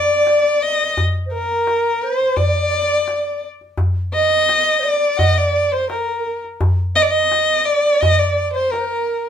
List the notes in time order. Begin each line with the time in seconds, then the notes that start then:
Already playing: D5
0.27 darbuka tek
0.62 D#5, darbuka ka
0.80 darbuka ka
0.97 darbuka dum
1.26 C5
1.33 A#4
1.67 darbuka tek
2.02 C5, darbuka ka
2.20 darbuka ka
2.37 D5, darbuka dum
2.48 D5
2.55 D5, darbuka ka
2.61 D5
2.68 D5
2.77 D5
2.83 D5
2.89 D5
3.08 D5, darbuka tek
3.61 darbuka ka
3.77 darbuka dum
4.13 D#5, darbuka ka
4.49 darbuka tek
4.80 C5 D5
4.84 D5, darbuka ka
5.16 D#5 F#5, darbuka dum
5.32 D#5
5.37 D5, darbuka ka
5.55 darbuka ka
5.72 C5
5.90 A#4, darbuka tek
5.98 A#4
6.03 A#4
6.11 A#4
6.18 A#4
6.26 A#4, darbuka ka
6.44 darbuka ka
6.61 darbuka dum
6.96 D#5, darbuka ka
7.02 D5
7.10 D#5
7.32 darbuka tek
7.65 D5, darbuka ka
8.01 D#5, darbuka dum
8.19 D5
8.38 darbuka ka
8.53 C5
8.71 A#4, darbuka tek
8.79 C5
8.87 A#4